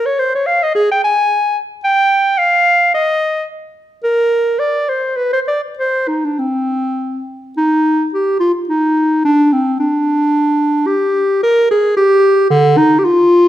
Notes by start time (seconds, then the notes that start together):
0.06 C#5
0.19 C5
0.35 C#5
0.46 F5
0.63 D#5
0.75 G#4
0.91 G5
1.04 G#5
1.84 G5
2.38 F5
2.94 D#5
4.03 A#4
4.59 D5
4.89 C5
5.16 B4
5.33 C5
5.48 D5
5.78 C5
6.08 D#4
6.25 D4
6.39 C4
7.57 D#4
8.14 G4
8.40 F4
8.69 D#4
9.25 D4
9.52 C4
9.80 D4
10.86 G4
11.43 A#4
11.71 G#4
11.97 G4
12.50 D3
12.77 D#4
12.99 G4
13.04 F4